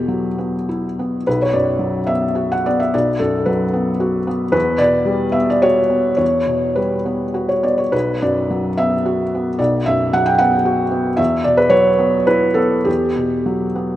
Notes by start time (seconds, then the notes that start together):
Already playing: E2 B2 G4
0.08 F#3
0.38 B3
0.69 E4
0.99 B3
1.27 B1 B4
1.42 C#5
1.53 F#2 D5
1.79 F#3
2.07 B3 E5
2.35 F#4
2.52 F#5
2.66 B3 D5
2.80 E5
2.94 B1 D5
3.19 F#2 A4
3.46 F#3 B4
3.73 B3
4.00 F#4
4.27 B3
4.52 E2 B4
4.78 B2 D5
5.06 G3
5.32 B3 E5
5.50 D5
5.62 F#4 C#5
5.90 B3
6.17 E2 C#5
6.46 B2
6.76 G3 B4
7.06 B3
7.34 F#4
7.49 C#5
7.63 B3 D5
7.78 C#5
7.92 B1 B4
8.22 F#2 D5
8.50 F#3
8.78 B3 E5
9.05 F#4
9.35 B3
9.59 B1 D5
9.86 F#2 E5
10.13 F#3 F#5
10.26 G5
10.38 B3 F#5
10.65 F#4
10.91 B3
11.17 E2 E5
11.44 B2 D5
11.57 B4
11.70 F#3 C#5
11.98 B3
12.27 E4 B4
12.54 B3 A4
12.85 E2 G4
13.16 B2
13.46 F#3
13.75 B3